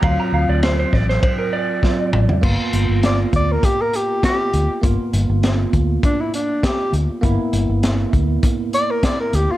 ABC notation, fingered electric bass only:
X:1
M:4/4
L:1/16
Q:"Swing 16ths" 1/4=100
K:Ddor
V:1 name="Fingered electric bass" clef=bass
D,, z D,, D,,3 A,,,2 z6 A,,, z | G,,, z G,,, G,,,3 D,,2 z6 D,, z | G,,, z G,,, G,,,3 D,,2 z6 D,, z | G,,, z G,,, G,,,3 D,,2 z6 D,, z |]